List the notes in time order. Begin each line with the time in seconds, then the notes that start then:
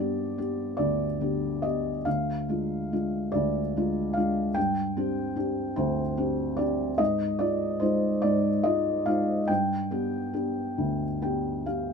Already playing: G2 B3 D4 G4 D5
0.38 B3 D4 G4
0.77 D2 D5
1.21 D3 B3 G4
1.62 B3 G4 D#5
2.05 D2 F5
2.49 G#3 D4 F4
2.92 G#3 D4 F4
3.32 D2 D5
3.77 G#3 D4 F4
4.13 G#3 D4 F5
4.17 F4
4.54 G2 G5
4.97 C4 D4 G4
5.36 C4 D4 G4
5.76 D2 C5
6.17 C4 D4 G4
6.57 C4 D4 G4 D5
6.98 G#2 D#5
7.39 G#3 D#4 F4 D5
7.80 G#3 D#4 F4 C5
8.22 G#2 D5
8.64 G#3 D#4 F4 D#5
9.06 G#3 D#4 F4 F5
9.47 G2 G5
9.91 B3 D4 G4
10.33 B3 D4 G4
10.78 D2
11.22 B3 D4 G4 G5
11.66 B3 D4 G4 F5